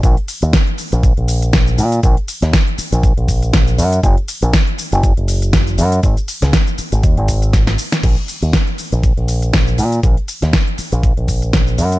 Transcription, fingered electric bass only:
X:1
M:4/4
L:1/16
Q:"Swing 16ths" 1/4=120
K:Gblyd
V:1 name="Fingered electric bass" clef=bass
B,,, z2 E,, z3 B,,,2 B,,,4- B,,, B,,2 | B,,, z2 E,, z3 B,,,2 B,,,4- B,,, G,,2 | G,,, z2 B,,, z3 G,,,2 G,,,4- G,,, G,,2 | A,,, z2 D,, z3 A,,, E,, A,,,4- A,,, z2 |
B,,, z2 E,, z3 B,,,2 B,,,4- B,,, B,,2 | B,,, z2 E,, z3 B,,,2 B,,,4- B,,, G,,2 |]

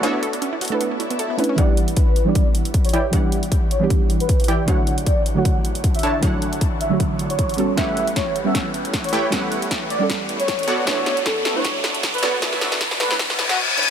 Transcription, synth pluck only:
X:1
M:4/4
L:1/16
Q:"Swing 16ths" 1/4=155
K:Edor
V:1 name="Synth pluck"
[A,DEB]6- [A,DEB] [A,DEB]6- [A,DEB] [A,CDEB]2 | [E,G,B,DG]6- [E,G,B,DG] [E,G,B,DG]8- [E,G,B,DG] | [E,G,B,DG]6- [E,G,B,DG] [E,G,B,DG]8- [E,G,B,DG] | [D,F,A,Fc]6- [D,F,A,Fc] [D,F,A,Fc]8- [D,F,A,Fc] |
[D,F,A,Fc]6- [D,F,A,Fc] [D,F,A,Fc]6- [D,F,A,Fc] [G,B,CFA]2 | [G,B,CAf]6- [G,B,CAf] [G,B,CAf]8- [G,B,CAf] | [G,B,CAf]6- [G,B,CAf] [G,B,CAf]6- [G,B,CAf] z2 | [A,DEB]6- [A,DEB] [A,DEB]8- [A,DEB] |
[A,DEB]6- [A,DEB] [A,DEB]6- [A,DEB] [A,CDEB]2 |]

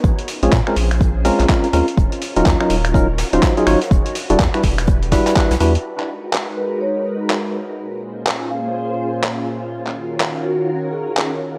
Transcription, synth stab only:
X:1
M:4/4
L:1/16
Q:"Swing 16ths" 1/4=124
K:A#phr
V:1 name="Synth stab"
z3 [G,^B,CEG] z [G,B,CEA] z4 [G,B,CEA]2 [G,B,CEA] z [G,B,CEA] z | z3 [F,CDEA]2 [F,CDEA] z2 [F,CDEA] z2 [F,CDE^B]2 [F,CDEG] [F,CDEc] z | z3 [=G,=D=EF=A] z [G,DEFB] z4 [G,DEFB]2 [G,DEFB] z [G,DEFB] z | z16 |
z16 | z16 |]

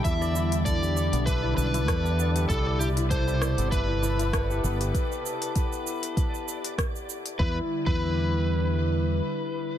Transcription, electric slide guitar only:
X:1
M:4/4
L:1/16
Q:"Swing 16ths" 1/4=98
K:Em
V:1 name="Electric slide guitar"
e4 d4 B2 B6 | A2 G2 c4 B8- | B12 z4 | B z2 B12- B |]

